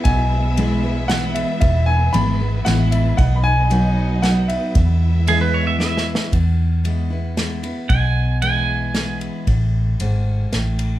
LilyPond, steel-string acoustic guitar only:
\new Staff \with { instrumentName = "Steel-string acoustic guitar" } { \time 3/4 \key e \major \tempo 4 = 115 << { r4 <e gis b e'>8 <b e'>8 <e gis b e'>4 | r4 <e gis b e'>8 <b e'>8 <e gis b e'>4 | r4 <fis b dis' fis'>4 <fis b dis' fis'>4 | r4 <e gis b e'>4 <e gis b e'>4 |
r4 <e gis b e'>8 <b e'>8 <e gis b e'>8 <b e'>8 | r4 <e gis b e'>4 <e gis b e'>4 | r2. | } \\ { b,2 r4 | e,2 r4 | b,2 r4 | e,2 r4 |
e,2 r4 | b,2 r4 | a,4 gis,4 a,4 | } >> }